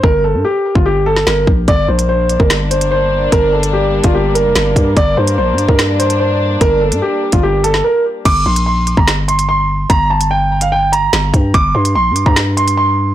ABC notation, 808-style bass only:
X:1
M:4/4
L:1/16
Q:1/4=146
K:Gm
V:1 name="808-style bass" clef=bass
G,,,3 G,, z3 G,,,4- G,,, G,,,2 B,,,2 | G,,,2 B,,,4- B,,, G,,,8- G,,, | G,,,6- G,,, G,,,4 F,,, G,,,2 G,,2 | G,,,2 G,,2 B,,,3/2 G,,3/2 G,,8- G,, |
G,,,3 G,, z3 G,,,4- G,,, z4 | G,,,2 B,,,4- B,,, G,,,8- G,,, | G,,,12 G,,,2 G,,2 | G,,,2 G,,2 B,,,3/2 G,,3/2 G,,8- G,, |]